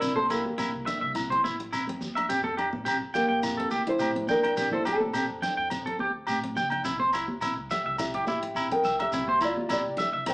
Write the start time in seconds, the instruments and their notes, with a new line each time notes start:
Already playing: nylon-string guitar D4 A#4
0.01 upright bass C2, steel-string acoustic guitar C4, clean electric guitar E4, shekere
0.16 nylon-string guitar C4 A4, clean electric guitar C5, high conga
0.30 nylon-string guitar A#3 G4, steel-string acoustic guitar E4, clean electric guitar E4, low agogo, shekere
0.45 upright bass E2, high conga
0.58 steel-string acoustic guitar C4, clean electric guitar E4, low agogo, shekere
0.73 upright bass C2
0.86 steel-string acoustic guitar D4, clean electric guitar E5, low conga, shekere
1.01 upright bass C2, clean electric guitar E5
1.15 steel-string acoustic guitar E4, low agogo, shekere
1.30 steel-string acoustic guitar C4, clean electric guitar C5
1.44 upright bass A1, clean electric guitar E4, high conga, shekere
1.60 steel-string acoustic guitar E4
1.73 upright bass E2, clean electric guitar E4, low agogo, shekere
1.87 steel-string acoustic guitar C4, high conga
2.01 upright bass E2, high conga, low conga, shekere
2.15 steel-string acoustic guitar D4, clean electric guitar E5, low agogo
2.29 upright bass F2, steel-string acoustic guitar C4, clean electric guitar G4, shekere
2.44 clean electric guitar A4, high conga
2.57 steel-string acoustic guitar D4, clean electric guitar G4, low agogo
2.73 upright bass A2, high conga
2.85 steel-string acoustic guitar C4, clean electric guitar G4, low agogo, shekere
3.01 upright bass F2
3.14 nylon-string guitar A#3 G4, steel-string acoustic guitar D4, clean electric guitar G5, low conga, shekere
3.29 upright bass F2, clean electric guitar G5
3.43 steel-string acoustic guitar E4, low agogo, shekere
3.57 steel-string acoustic guitar C4, clean electric guitar A4
3.71 upright bass D2, clean electric guitar G4, high conga, shekere
3.87 steel-string acoustic guitar D4, nylon-string guitar E4 C5
3.99 upright bass A2, clean electric guitar G4, low agogo, shekere
4.16 steel-string acoustic guitar C4, high conga
4.28 upright bass F2, nylon-string guitar D4 A#4, clean electric guitar G5, high conga, low conga, shekere
4.43 steel-string acoustic guitar D4, clean electric guitar G5, low agogo
4.57 upright bass F2, steel-string acoustic guitar C4, clean electric guitar G4, shekere
4.71 nylon-string guitar E4 C5, clean electric guitar A4, high conga, low conga
4.85 nylon-string guitar C4 A4, steel-string acoustic guitar D4, clean electric guitar G4, low agogo, shekere
5.00 upright bass A2, high conga
5.14 steel-string acoustic guitar C4, clean electric guitar G4, low agogo, shekere
5.29 upright bass F2
5.42 steel-string acoustic guitar D4, clean electric guitar G5, low conga, shekere
5.57 upright bass F2, clean electric guitar G5
5.70 steel-string acoustic guitar C4, low agogo, shekere
5.86 steel-string acoustic guitar C4, clean electric guitar A4
5.99 upright bass D2, clean electric guitar G4, high conga
6.27 upright bass A2, clean electric guitar G4, low agogo, shekere
6.43 steel-string acoustic guitar C4
6.56 upright bass C#2, clean electric guitar G5, high conga, low conga, shekere
6.70 steel-string acoustic guitar D4, clean electric guitar G5, low agogo
6.85 upright bass C2, steel-string acoustic guitar C4, clean electric guitar E4, shekere
6.99 clean electric guitar C5, high conga
7.13 clean electric guitar E4, steel-string acoustic guitar E4, low agogo, shekere
7.28 upright bass E2, high conga
7.41 steel-string acoustic guitar C4, clean electric guitar E4, low agogo, shekere
7.57 upright bass C2
7.70 nylon-string guitar G4 E5, clean electric guitar E5, muted steel-string acoustic guitar stroke, low conga, shekere
7.85 upright bass C2, clean electric guitar E5
7.98 steel-string acoustic guitar E4, nylon-string guitar G4 E5, low agogo, shekere
8.14 steel-string acoustic guitar C4, clean electric guitar G4
8.27 upright bass A1, clean electric guitar E4, nylon-string guitar G4 E5, high conga, shekere
8.43 steel-string acoustic guitar E4
8.55 upright bass E2, clean electric guitar E4, low agogo, shekere
8.71 steel-string acoustic guitar C4, nylon-string guitar A#4 G5
8.83 upright bass C2, clean electric guitar E5, low conga, shekere
8.99 steel-string acoustic guitar D4, nylon-string guitar G4 E5, clean electric guitar E5, low agogo
9.12 upright bass C2, steel-string acoustic guitar C4, clean electric guitar E4, shekere
9.28 clean electric guitar C5, high conga
9.41 steel-string acoustic guitar E4, clean electric guitar E4, nylon-string guitar F4 D5, low agogo, shekere
9.56 upright bass E2, high conga
9.69 steel-string acoustic guitar C4, clean electric guitar E4, nylon-string guitar G4 D5, low agogo, shekere
9.84 upright bass C2
9.97 steel-string acoustic guitar D4, nylon-string guitar G4 E5, clean electric guitar E5, low conga, shekere
10.12 upright bass C2, clean electric guitar E5
10.26 nylon-string guitar C5 G5, muted steel-string acoustic guitar stroke, low agogo, shekere